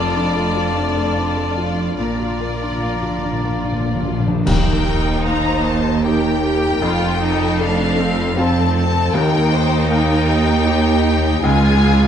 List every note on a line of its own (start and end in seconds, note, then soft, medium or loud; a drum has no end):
0.00 1.94 F1 medium
0.00 1.94 F2 medium
0.00 1.95 F2 medium
0.00 0.14 F4 medium
0.00 0.56 F4 soft
0.00 1.95 F4 medium
0.00 0.28 A4 soft
0.00 1.69 D5 medium
0.00 1.94 D5 medium
0.00 1.65 A5 medium
0.13 0.47 D4 soft
0.13 0.34 A4 medium
0.34 0.68 A3 soft
0.34 0.55 F4 medium
0.53 0.74 D4 medium
0.53 0.87 F4 soft
0.72 0.94 A3 medium
0.72 1.08 D4 soft
0.93 1.14 D4 soft
0.97 1.28 A3 soft
1.13 1.49 D4 soft
1.13 1.34 F4 soft
1.33 1.69 A3 soft
1.33 1.55 A4 soft
1.54 1.76 F4 soft
1.54 1.90 F4 soft
1.74 1.97 D4 soft
1.74 1.98 D4 soft
1.96 4.22 A#1 medium
1.96 4.22 A#2 medium
1.96 2.06 A#2 soft
1.96 4.43 A#2 medium
1.96 2.17 A#3 medium
1.96 4.22 F4 medium
1.96 4.10 D5 medium
1.96 4.22 D5 medium
1.96 4.10 A#5 soft
2.07 2.13 A#2 soft
2.15 2.21 A#2 soft
2.15 2.39 D4 soft
2.20 2.30 A#2 soft
2.20 2.53 F4 soft
2.31 2.38 A#2 soft
2.38 2.46 A#2 soft
2.38 2.60 F4 soft
2.38 2.74 A#4 soft
2.47 2.54 A#2 soft
2.55 2.61 A#2 soft
2.55 2.80 A#4 soft
2.62 2.69 A#2 soft
2.62 2.95 D4 soft
2.70 2.77 A#2 soft
2.78 2.85 A#2 soft
2.78 3.01 F4 soft
2.83 3.15 A#3 soft
2.87 2.93 A#2 soft
2.94 3.01 A#2 soft
3.01 3.09 A#2 soft
3.01 3.22 D4 soft
3.01 3.36 F4 soft
3.11 3.17 A#2 soft
3.18 3.24 A#2 medium
3.18 3.43 A#3 soft
3.24 3.32 A#2 medium
3.24 3.57 D4 soft
3.33 3.40 A#2 medium
3.42 3.49 A#2 medium
3.42 3.77 A#3 soft
3.42 3.64 D4 soft
3.50 3.56 A#2 medium
3.57 3.63 A#2 medium
3.62 3.71 A#2 medium
3.62 3.98 D4 soft
3.62 3.84 F4 soft
3.72 3.79 A#2 medium
3.80 3.87 A#2 medium
3.80 4.05 A#4 soft
3.87 3.94 A#2 medium
3.87 4.19 A#3 soft
3.95 4.01 A#2 medium
4.03 4.10 A#2 medium
4.03 4.26 F4 soft
4.07 4.39 F4 soft
4.11 4.19 A#2 medium
4.20 4.27 A#2 medium
4.26 4.33 A#2 medium
4.26 4.47 D4 soft
4.34 4.42 A#2 medium
4.46 6.77 D#2 medium
4.46 5.61 D#3 loud
4.46 6.00 D#4 medium
4.46 5.22 A#4 medium
4.46 5.22 G5 medium
4.46 concert bass drum medium
4.46 crash medium
5.25 6.51 A#3 medium
5.25 6.04 C5 medium
5.25 5.64 A#5 medium
5.65 6.04 A5 medium
6.03 6.78 D#4 medium
6.03 6.42 G4 medium
6.03 6.78 G4 medium
6.03 6.81 A#4 medium
6.03 7.56 G5 medium
6.43 6.81 G4 medium
6.81 9.14 F1 medium
6.81 9.14 F2 medium
6.81 9.10 F2 medium
6.81 7.20 F4 medium
6.81 8.35 A4 medium
7.20 7.58 D#4 medium
7.60 8.84 A3 medium
7.60 7.98 D4 medium
7.60 8.38 F5 medium
7.99 8.37 C4 medium
8.36 9.10 C4 medium
8.36 9.13 C4 medium
8.36 9.10 F4 medium
8.36 9.12 A4 medium
8.36 8.75 A5 medium
8.76 9.14 A5 medium
9.13 11.38 D#2 medium
9.13 11.39 D#2 medium
9.13 10.24 D#3 loud
9.13 11.44 D#4 medium
9.13 9.52 A#4 medium
9.13 9.89 G5 medium
9.51 9.90 C5 medium
9.89 11.12 A#3 medium
9.89 10.66 A#4 medium
9.89 11.40 G5 medium
10.65 11.39 D#4 medium
10.65 11.42 G4 medium
10.65 11.39 G4 medium
11.41 12.07 C#2 loud
11.41 12.07 C#2 medium
11.41 12.07 F4 medium
11.41 12.07 G#4 medium
11.41 12.07 G#5 medium